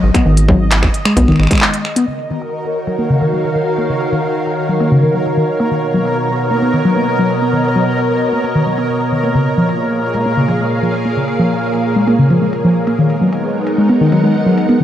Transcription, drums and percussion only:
0.14 finger snap medium
0.14 kick loud
0.14 closed hi-hat medium
0.37 closed hi-hat medium
0.49 kick loud
0.71 finger snap medium
0.71 clap loud
0.71 closed hi-hat medium
0.83 finger snap medium
0.83 kick loud
0.94 closed hi-hat medium
1.05 finger snap medium
1.17 kick loud
1.17 closed hi-hat medium
1.28 finger snap soft
1.32 finger snap soft
1.36 finger snap soft
1.40 finger snap soft
1.43 finger snap soft
1.47 finger snap soft
1.47 kick loud
1.51 finger snap soft
1.51 closed hi-hat medium
1.53 finger snap soft
1.55 finger snap soft
1.58 finger snap soft
1.60 finger snap medium
1.60 clap loud
1.74 closed hi-hat medium
1.85 finger snap soft
1.96 closed hi-hat medium
2.08 closed hi-hat medium
2.42 closed hi-hat medium
2.64 closed hi-hat soft
2.87 closed hi-hat medium
3.21 closed hi-hat medium
3.44 closed hi-hat medium
3.78 closed hi-hat medium
4.01 closed hi-hat medium
4.23 closed hi-hat soft
4.27 closed hi-hat soft
4.31 closed hi-hat soft
4.46 closed hi-hat medium
4.80 closed hi-hat medium
5.26 closed hi-hat medium
5.60 closed hi-hat medium
5.83 closed hi-hat medium
6.05 closed hi-hat medium
6.08 closed hi-hat medium
6.10 closed hi-hat medium
6.12 closed hi-hat soft
6.62 closed hi-hat medium
6.85 closed hi-hat medium
7.30 closed hi-hat medium
7.36 closed hi-hat medium
7.64 closed hi-hat medium
7.99 closed hi-hat medium
8.21 closed hi-hat soft
8.44 closed hi-hat medium
8.78 closed hi-hat medium
9.01 closed hi-hat soft
9.23 closed hi-hat medium
9.35 closed hi-hat medium
9.69 closed hi-hat medium
9.92 closed hi-hat soft
9.96 closed hi-hat soft
9.99 closed hi-hat soft
10.03 closed hi-hat soft
10.07 closed hi-hat soft
10.11 closed hi-hat soft
10.14 closed hi-hat medium
10.48 closed hi-hat medium
10.71 closed hi-hat soft
10.94 closed hi-hat medium
11.28 closed hi-hat medium
11.51 closed hi-hat soft
11.74 closed hi-hat medium
12.08 closed hi-hat medium
12.30 closed hi-hat soft
12.53 closed hi-hat medium
12.87 closed hi-hat medium
13.10 closed hi-hat soft
13.33 closed hi-hat medium
13.67 closed hi-hat medium
13.89 closed hi-hat soft
14.12 closed hi-hat medium
14.58 closed hi-hat medium
14.69 closed hi-hat soft

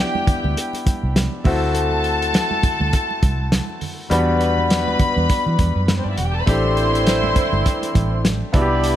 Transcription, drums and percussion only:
0.15 muted conga soft
0.15 high conga medium
0.27 kick medium
0.27 closed hi-hat medium
0.27 low conga medium
0.44 high conga medium
0.57 closed hi-hat medium
0.57 muted conga soft
0.73 closed hi-hat medium
0.73 muted conga soft
0.86 kick medium
0.86 closed hi-hat medium
0.86 high conga medium
1.16 snare loud
1.16 closed hi-hat medium
1.16 high conga medium
1.32 muted conga soft
1.44 kick loud
1.44 open hi-hat soft
1.44 low conga medium
1.74 closed hi-hat medium
1.74 muted conga soft
1.91 muted conga soft
2.04 closed hi-hat medium
2.22 closed hi-hat medium
2.33 snare loud
2.33 closed hi-hat medium
2.33 muted conga soft
2.51 muted conga soft
2.51 high conga medium
2.63 kick medium
2.63 closed hi-hat medium
2.63 low conga medium
2.81 high conga medium
2.93 kick medium
2.93 closed hi-hat medium
2.93 muted conga soft
3.11 muted conga soft
3.23 kick medium
3.23 closed hi-hat medium
3.23 high conga medium
3.52 snare medium
3.52 closed hi-hat medium
3.52 muted conga soft
3.52 high conga medium
3.69 muted conga soft
3.81 open hi-hat medium
3.81 low conga medium
4.11 closed hi-hat medium
4.29 muted conga soft
4.41 closed hi-hat soft
4.58 high conga soft
4.70 snare loud
4.70 closed hi-hat medium
4.70 muted conga soft
4.88 high conga medium
4.99 kick medium
4.99 closed hi-hat medium
4.99 low conga medium
5.18 high conga medium
5.29 kick medium
5.29 closed hi-hat medium
5.29 muted conga soft
5.47 muted conga soft
5.59 kick medium
5.59 closed hi-hat medium
5.59 high conga medium
5.88 snare loud
5.88 closed hi-hat medium
5.88 muted conga soft
5.88 high conga medium
6.17 closed hi-hat medium
6.17 low conga medium
6.47 kick loud
6.47 closed hi-hat medium
6.47 muted conga soft
6.65 muted conga soft
6.77 closed hi-hat soft
6.95 closed hi-hat soft
7.07 snare loud
7.07 closed hi-hat medium
7.24 muted conga soft
7.24 high conga medium
7.35 kick medium
7.35 closed hi-hat medium
7.35 low conga medium
7.53 high conga medium
7.66 kick medium
7.66 closed hi-hat medium
7.82 closed hi-hat medium
7.82 muted conga soft
7.95 kick medium
7.95 closed hi-hat medium
7.95 high conga medium
8.25 snare loud
8.25 closed hi-hat medium
8.25 muted conga soft
8.25 high conga medium
8.42 muted conga soft
8.54 kick loud
8.54 closed hi-hat medium
8.54 low conga medium
8.83 closed hi-hat loud
8.83 muted conga soft

